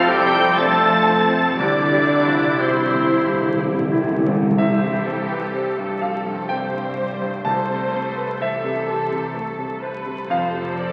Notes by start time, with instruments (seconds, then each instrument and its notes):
Already playing: double bass section F2, grand piano F2 C4 G4 A4, harp F3 A3 C4 C5, viola section C4 A4, cello section E4, oboe F4, flute F5
0.08 french horn section G3, clarinet G4, oboe G4, violin section G5 G6, flute G5
0.26 grand piano C3
0.58 french horn section A3, grand piano C4, cello section D4, clarinet A4, oboe A4, flute A5, violin section A5 A6
0.91 grand piano F4, harp F4
1.09 cello section C4
1.25 grand piano C4, harp C4
1.57 grand piano C2, double bass section C2, harp C3, timpani C3, french horn section D3, clarinet D4, oboe D4, viola section E4 G4, cello section E4, violin section D5 D6, flute D5
1.67 timpani C3
1.75 timpani C3
1.83 timpani C3
1.91 timpani C3, harp G3, grand piano G4
1.99 timpani C3
2.07 timpani C3
2.15 timpani C3
2.23 timpani C3, grand piano F3, harp C4
2.30 timpani C3
2.38 timpani C3
2.46 timpani C3
2.55 timpani C3, french horn section C3, violin section C5
2.59 timpani C3, oboe C4, clarinet C4, grand piano G4, flute C5, violin section C6
2.70 timpani C3
2.79 timpani C3
2.87 timpani C3
2.93 timpani C3, grand piano C4, harp G4
3.02 timpani C3
3.10 timpani C3
3.17 timpani C3
3.25 grand piano G2, timpani C3
3.33 timpani C3
3.40 timpani C3
3.48 timpani C3
3.56 timpani C3, grand piano C4, harp G4
3.64 timpani C3
3.72 timpani C3
3.79 timpani C3
3.88 timpani C3, harp C4
3.93 timpani C3, grand piano E4
4.02 timpani C3
4.10 timpani C3
4.18 timpani C3
4.26 timpani C3, harp G3, grand piano C4
4.34 timpani C3
4.42 timpani C3
4.50 timpani C3
4.57 grand piano C2 E5, double bass section C2, harp C3, cello section E3, violin section E4 G4, viola section C5
4.82 grand piano G2
4.90 harp G3
5.05 viola section A4, grand piano C5
5.22 harp C4
5.31 grand piano B4
5.54 harp G4, violin section G4, grand piano C5
5.78 grand piano G2
6.01 cello section F3, grand piano G4 F5, violin section A4
6.18 harp G4
6.26 grand piano G2
6.49 cello section G3, grand piano C4 G5, viola section G4, violin section C5
6.74 grand piano G2
6.82 harp C4
6.98 grand piano C5
7.13 harp G3
7.22 grand piano G2
7.44 grand piano C2 A5, harp C3, cello section A3, violin section A4 C5, viola section C5
7.69 grand piano C3
7.77 harp C4
7.91 grand piano C4, viola section A4, violin section B4
8.08 harp A3
8.17 grand piano B4
8.39 cello section E3, viola section G4, violin section A4 C5, harp A4, grand piano C5 E5
8.64 grand piano C3
8.88 grand piano A4
9.04 harp A4
9.11 grand piano C3
9.35 grand piano A3, viola section A4, violin section A4
9.58 grand piano C3
9.67 harp A3
9.82 viola section B4, grand piano C5
9.98 harp C4
10.06 grand piano C3
10.29 double bass section F1, grand piano F2 F5, harp F2, cello section F3, violin section A4, viola section C5
10.53 grand piano C3
10.62 harp C3
10.76 grand piano C5, viola section D5